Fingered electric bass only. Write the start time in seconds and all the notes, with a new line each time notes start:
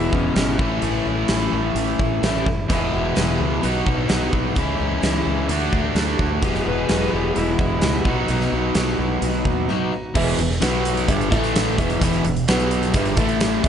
Already playing: E1
0.13 E1
0.36 G#1
0.59 A1
0.82 A1
1.06 A1
1.29 A1
1.52 A1
1.75 A1
1.99 A1
2.22 A1
2.47 F#1
2.70 E1
2.93 E1
3.16 E1
3.40 C#2
3.64 B1
3.87 B1
4.10 B1
4.33 B1
4.56 C#2
4.80 C#2
5.03 C#2
5.26 C#2
5.49 D2
5.73 D2
5.95 D2
6.19 D2
6.42 E1
6.66 E1
6.89 E1
7.13 E1
7.36 E1
7.59 E1
7.83 C#2
8.05 B1
8.29 B1
8.52 B1
8.75 B1
8.99 B1
9.22 B1
9.45 D#2
10.15 E1
10.38 E1
10.61 B1
11.08 G1
11.32 A1
11.78 E1
12.01 E1
12.25 E1
12.48 B1
12.94 G1
13.17 A1
13.64 E1